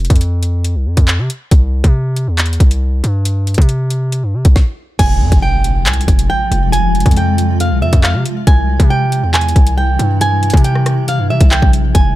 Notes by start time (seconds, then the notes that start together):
0.05 closed hi-hat
0.10 F2, kick, closed hi-hat
0.16 closed hi-hat
0.21 closed hi-hat
0.43 closed hi-hat
0.65 closed hi-hat
0.75 C2
0.86 F2
0.97 F2, kick, closed hi-hat
1.08 clap
1.19 C3
1.30 closed hi-hat
1.51 C2, kick, closed hi-hat
1.84 C3, kick, closed hi-hat
2.16 closed hi-hat
2.28 E2
2.38 clap, closed hi-hat
2.46 closed hi-hat
2.53 closed hi-hat
2.60 C2, kick, closed hi-hat
2.71 closed hi-hat
3.04 G2, closed hi-hat
3.25 closed hi-hat
3.47 closed hi-hat
3.54 C3, kick, closed hi-hat
3.62 closed hi-hat
3.69 closed hi-hat
3.90 closed hi-hat
4.12 closed hi-hat
4.23 G2
4.34 C3
4.45 C2, kick, closed hi-hat
4.56 kick, snare
4.99 F1 C3 F3 G#3 F4 G#5, kick, closed hi-hat, crash, impact
5.21 F2
5.32 F1, kick, closed hi-hat
5.42 G5
5.64 closed hi-hat
5.86 C2 G#5, clap, closed hi-hat
5.93 closed hi-hat
6.01 closed hi-hat
6.08 F1, kick, closed hi-hat
6.19 closed hi-hat
6.30 G5
6.51 F1, closed hi-hat
6.72 G#5, closed hi-hat
6.95 closed hi-hat
7.00 closed hi-hat
7.06 F2, kick, closed hi-hat
7.11 closed hi-hat
7.17 G5, closed hi-hat
7.38 closed hi-hat
7.60 F5, closed hi-hat
7.71 C2
7.82 F2 E5
7.93 F2, kick, closed hi-hat
8.04 F5, clap
8.14 C3
8.26 closed hi-hat
8.47 C2 C3 E3 G3 E4 G#5, kick, closed hi-hat
8.80 C3, kick, closed hi-hat
8.90 G5
9.12 closed hi-hat
9.23 E2
9.34 G#5, clap, closed hi-hat
9.41 closed hi-hat
9.49 closed hi-hat
9.56 C2, kick, closed hi-hat
9.67 closed hi-hat
9.78 G5
9.99 G2, closed hi-hat
10.21 G#5, closed hi-hat
10.43 closed hi-hat
10.50 C3, kick, closed hi-hat
10.57 closed hi-hat
10.64 G5, closed hi-hat
10.75 cross-stick
10.86 cross-stick, closed hi-hat
11.08 F5, closed hi-hat
11.19 G2
11.30 C3 E5
11.41 C2, kick, closed hi-hat
11.51 G5, clap
11.62 A#1, kick
11.73 closed hi-hat
11.95 F1 C3 F3 G#3 F4 G#5, kick, closed hi-hat